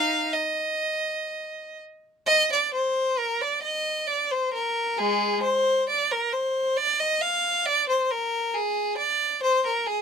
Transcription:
0, 0, Header, 1, 2, 480
1, 0, Start_track
1, 0, Tempo, 969305
1, 1123, Tempo, 916031
1, 1124, Time_signature, 3, 2, 24, 8
1, 1603, Tempo, 899550
1, 3523, Tempo, 875912
1, 5296, End_track
2, 0, Start_track
2, 0, Title_t, "Violin"
2, 0, Program_c, 0, 40
2, 0, Note_on_c, 0, 63, 89
2, 0, Note_on_c, 0, 77, 107
2, 140, Note_off_c, 0, 63, 0
2, 149, Note_off_c, 0, 77, 0
2, 163, Note_on_c, 0, 75, 82
2, 885, Note_off_c, 0, 75, 0
2, 1120, Note_on_c, 0, 75, 121
2, 1235, Note_off_c, 0, 75, 0
2, 1257, Note_on_c, 0, 74, 89
2, 1371, Note_on_c, 0, 72, 82
2, 1372, Note_off_c, 0, 74, 0
2, 1601, Note_off_c, 0, 72, 0
2, 1604, Note_on_c, 0, 70, 87
2, 1723, Note_off_c, 0, 70, 0
2, 1727, Note_on_c, 0, 74, 85
2, 1838, Note_on_c, 0, 75, 92
2, 1843, Note_off_c, 0, 74, 0
2, 2074, Note_off_c, 0, 75, 0
2, 2075, Note_on_c, 0, 74, 82
2, 2199, Note_off_c, 0, 74, 0
2, 2205, Note_on_c, 0, 72, 78
2, 2322, Note_on_c, 0, 70, 87
2, 2325, Note_off_c, 0, 72, 0
2, 2561, Note_off_c, 0, 70, 0
2, 2561, Note_on_c, 0, 56, 75
2, 2562, Note_on_c, 0, 68, 92
2, 2787, Note_off_c, 0, 56, 0
2, 2799, Note_on_c, 0, 72, 92
2, 2805, Note_off_c, 0, 68, 0
2, 3038, Note_off_c, 0, 72, 0
2, 3049, Note_on_c, 0, 74, 87
2, 3165, Note_off_c, 0, 74, 0
2, 3165, Note_on_c, 0, 70, 84
2, 3277, Note_on_c, 0, 72, 86
2, 3285, Note_off_c, 0, 70, 0
2, 3518, Note_on_c, 0, 74, 102
2, 3519, Note_off_c, 0, 72, 0
2, 3639, Note_on_c, 0, 75, 93
2, 3642, Note_off_c, 0, 74, 0
2, 3759, Note_on_c, 0, 77, 98
2, 3763, Note_off_c, 0, 75, 0
2, 4003, Note_on_c, 0, 74, 114
2, 4004, Note_off_c, 0, 77, 0
2, 4125, Note_off_c, 0, 74, 0
2, 4129, Note_on_c, 0, 72, 83
2, 4246, Note_off_c, 0, 72, 0
2, 4250, Note_on_c, 0, 70, 88
2, 4487, Note_off_c, 0, 70, 0
2, 4489, Note_on_c, 0, 68, 85
2, 4725, Note_off_c, 0, 68, 0
2, 4726, Note_on_c, 0, 74, 92
2, 4958, Note_off_c, 0, 74, 0
2, 4973, Note_on_c, 0, 72, 97
2, 5085, Note_off_c, 0, 72, 0
2, 5100, Note_on_c, 0, 70, 82
2, 5209, Note_off_c, 0, 70, 0
2, 5211, Note_on_c, 0, 68, 83
2, 5296, Note_off_c, 0, 68, 0
2, 5296, End_track
0, 0, End_of_file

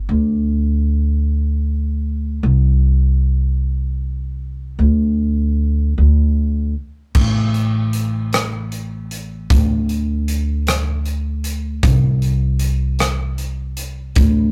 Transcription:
0, 0, Header, 1, 3, 480
1, 0, Start_track
1, 0, Tempo, 784314
1, 56, Time_signature, 6, 3, 24, 8
1, 5336, Tempo, 778210
1, 8912, End_track
2, 0, Start_track
2, 0, Title_t, "Upright bass"
2, 0, Program_c, 0, 32
2, 54, Note_on_c, 0, 38, 77
2, 1461, Note_off_c, 0, 38, 0
2, 1488, Note_on_c, 0, 36, 78
2, 2905, Note_off_c, 0, 36, 0
2, 2929, Note_on_c, 0, 38, 74
2, 3630, Note_off_c, 0, 38, 0
2, 3658, Note_on_c, 0, 38, 72
2, 4115, Note_off_c, 0, 38, 0
2, 4376, Note_on_c, 0, 33, 75
2, 5794, Note_off_c, 0, 33, 0
2, 5819, Note_on_c, 0, 38, 74
2, 7233, Note_off_c, 0, 38, 0
2, 7257, Note_on_c, 0, 36, 79
2, 8673, Note_off_c, 0, 36, 0
2, 8693, Note_on_c, 0, 38, 78
2, 8912, Note_off_c, 0, 38, 0
2, 8912, End_track
3, 0, Start_track
3, 0, Title_t, "Drums"
3, 4374, Note_on_c, 9, 49, 73
3, 4376, Note_on_c, 9, 36, 83
3, 4435, Note_off_c, 9, 49, 0
3, 4437, Note_off_c, 9, 36, 0
3, 4616, Note_on_c, 9, 42, 40
3, 4677, Note_off_c, 9, 42, 0
3, 4854, Note_on_c, 9, 42, 64
3, 4915, Note_off_c, 9, 42, 0
3, 5096, Note_on_c, 9, 42, 64
3, 5105, Note_on_c, 9, 37, 97
3, 5157, Note_off_c, 9, 42, 0
3, 5167, Note_off_c, 9, 37, 0
3, 5336, Note_on_c, 9, 42, 43
3, 5398, Note_off_c, 9, 42, 0
3, 5578, Note_on_c, 9, 42, 62
3, 5640, Note_off_c, 9, 42, 0
3, 5819, Note_on_c, 9, 36, 87
3, 5819, Note_on_c, 9, 42, 76
3, 5881, Note_off_c, 9, 36, 0
3, 5881, Note_off_c, 9, 42, 0
3, 6060, Note_on_c, 9, 42, 41
3, 6121, Note_off_c, 9, 42, 0
3, 6300, Note_on_c, 9, 42, 66
3, 6362, Note_off_c, 9, 42, 0
3, 6539, Note_on_c, 9, 42, 66
3, 6549, Note_on_c, 9, 37, 97
3, 6601, Note_off_c, 9, 42, 0
3, 6610, Note_off_c, 9, 37, 0
3, 6777, Note_on_c, 9, 42, 43
3, 6839, Note_off_c, 9, 42, 0
3, 7015, Note_on_c, 9, 42, 66
3, 7077, Note_off_c, 9, 42, 0
3, 7255, Note_on_c, 9, 42, 75
3, 7256, Note_on_c, 9, 36, 82
3, 7317, Note_off_c, 9, 42, 0
3, 7318, Note_off_c, 9, 36, 0
3, 7496, Note_on_c, 9, 42, 44
3, 7557, Note_off_c, 9, 42, 0
3, 7727, Note_on_c, 9, 42, 70
3, 7788, Note_off_c, 9, 42, 0
3, 7970, Note_on_c, 9, 42, 65
3, 7979, Note_on_c, 9, 37, 91
3, 8031, Note_off_c, 9, 42, 0
3, 8041, Note_off_c, 9, 37, 0
3, 8212, Note_on_c, 9, 42, 47
3, 8273, Note_off_c, 9, 42, 0
3, 8450, Note_on_c, 9, 42, 62
3, 8512, Note_off_c, 9, 42, 0
3, 8689, Note_on_c, 9, 42, 73
3, 8694, Note_on_c, 9, 36, 84
3, 8751, Note_off_c, 9, 42, 0
3, 8756, Note_off_c, 9, 36, 0
3, 8912, End_track
0, 0, End_of_file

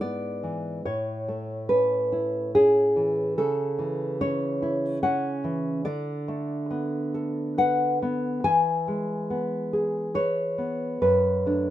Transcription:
0, 0, Header, 1, 2, 480
1, 0, Start_track
1, 0, Key_signature, 3, "major"
1, 0, Tempo, 837989
1, 488, Time_signature, 3, 2, 24, 8
1, 3841, Tempo, 864553
1, 6615, End_track
2, 0, Start_track
2, 0, Title_t, "Nylon-string guitar"
2, 0, Program_c, 0, 24
2, 0, Note_on_c, 0, 44, 42
2, 0, Note_on_c, 0, 64, 37
2, 6, Note_on_c, 0, 74, 76
2, 8, Note_on_c, 0, 59, 42
2, 249, Note_on_c, 0, 52, 38
2, 469, Note_off_c, 0, 44, 0
2, 471, Note_off_c, 0, 74, 0
2, 488, Note_off_c, 0, 52, 0
2, 490, Note_on_c, 0, 73, 58
2, 491, Note_off_c, 0, 64, 0
2, 491, Note_on_c, 0, 45, 50
2, 492, Note_off_c, 0, 59, 0
2, 736, Note_on_c, 0, 57, 39
2, 947, Note_off_c, 0, 73, 0
2, 968, Note_on_c, 0, 71, 70
2, 971, Note_on_c, 0, 61, 38
2, 1217, Note_on_c, 0, 64, 46
2, 1433, Note_off_c, 0, 71, 0
2, 1455, Note_off_c, 0, 57, 0
2, 1455, Note_off_c, 0, 61, 0
2, 1460, Note_on_c, 0, 68, 77
2, 1461, Note_on_c, 0, 61, 48
2, 1697, Note_on_c, 0, 52, 41
2, 1913, Note_off_c, 0, 45, 0
2, 1920, Note_off_c, 0, 68, 0
2, 1935, Note_on_c, 0, 69, 62
2, 1936, Note_off_c, 0, 52, 0
2, 1939, Note_off_c, 0, 64, 0
2, 1939, Note_on_c, 0, 49, 48
2, 1940, Note_off_c, 0, 61, 0
2, 2169, Note_on_c, 0, 52, 42
2, 2392, Note_off_c, 0, 69, 0
2, 2411, Note_on_c, 0, 61, 45
2, 2411, Note_on_c, 0, 73, 76
2, 2649, Note_on_c, 0, 64, 50
2, 2859, Note_off_c, 0, 73, 0
2, 2874, Note_off_c, 0, 61, 0
2, 2876, Note_off_c, 0, 52, 0
2, 2880, Note_on_c, 0, 61, 48
2, 2880, Note_on_c, 0, 78, 80
2, 3107, Note_off_c, 0, 78, 0
2, 3117, Note_on_c, 0, 52, 46
2, 3336, Note_off_c, 0, 49, 0
2, 3348, Note_off_c, 0, 64, 0
2, 3350, Note_off_c, 0, 61, 0
2, 3350, Note_on_c, 0, 74, 82
2, 3353, Note_on_c, 0, 50, 55
2, 3358, Note_off_c, 0, 52, 0
2, 3599, Note_on_c, 0, 57, 43
2, 3841, Note_on_c, 0, 59, 45
2, 4084, Note_on_c, 0, 69, 47
2, 4300, Note_off_c, 0, 74, 0
2, 4325, Note_off_c, 0, 57, 0
2, 4325, Note_on_c, 0, 71, 50
2, 4328, Note_on_c, 0, 78, 88
2, 4567, Note_off_c, 0, 59, 0
2, 4573, Note_on_c, 0, 59, 46
2, 4780, Note_off_c, 0, 50, 0
2, 4787, Note_off_c, 0, 78, 0
2, 4804, Note_off_c, 0, 71, 0
2, 4805, Note_on_c, 0, 52, 53
2, 4805, Note_on_c, 0, 80, 92
2, 4806, Note_off_c, 0, 69, 0
2, 4807, Note_off_c, 0, 59, 0
2, 5047, Note_on_c, 0, 56, 40
2, 5283, Note_on_c, 0, 59, 44
2, 5521, Note_on_c, 0, 68, 46
2, 5734, Note_off_c, 0, 80, 0
2, 5748, Note_off_c, 0, 59, 0
2, 5750, Note_on_c, 0, 71, 48
2, 5754, Note_on_c, 0, 73, 80
2, 5758, Note_off_c, 0, 56, 0
2, 5993, Note_on_c, 0, 59, 38
2, 6217, Note_off_c, 0, 52, 0
2, 6217, Note_off_c, 0, 73, 0
2, 6228, Note_off_c, 0, 71, 0
2, 6234, Note_on_c, 0, 42, 52
2, 6235, Note_on_c, 0, 71, 59
2, 6236, Note_off_c, 0, 59, 0
2, 6240, Note_off_c, 0, 68, 0
2, 6480, Note_on_c, 0, 57, 33
2, 6484, Note_on_c, 0, 62, 39
2, 6615, Note_off_c, 0, 42, 0
2, 6615, Note_off_c, 0, 57, 0
2, 6615, Note_off_c, 0, 62, 0
2, 6615, Note_off_c, 0, 71, 0
2, 6615, End_track
0, 0, End_of_file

